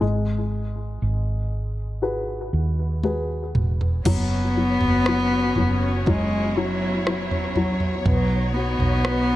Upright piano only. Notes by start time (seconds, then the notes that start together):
0.01 G#3
2.02 F#4 G#4 B4
3.04 F#4 G#4 B4
4.06 F#3
4.57 F#3
5.08 F#3
5.57 F#3
6.08 F#3
6.57 F#3
7.08 F#3
7.57 F#3
8.07 B3
8.56 F#4
9.05 B3